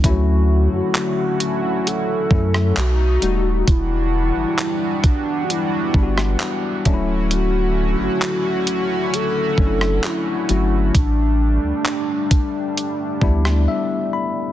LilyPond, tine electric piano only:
\new Staff \with { instrumentName = "Tine electric piano" } { \time 4/4 \key d \major \tempo 4 = 66 << { r1 | r1 | r1 | r2. e''8 b''8 | } \\ { <e fis a cis' e'>2 r8 <fis a cis' e'>8 r8 <g a dis' fis'>8 | r2 r8 <g b d' e' fis'>4 <fis a cis' d' e'>8~ | <fis a cis' d' e'>4. r4 <fis a cis' d' e'>4 <fis a cis' fis'>8 | r2 r8 <g b d' e'>4. | } >> }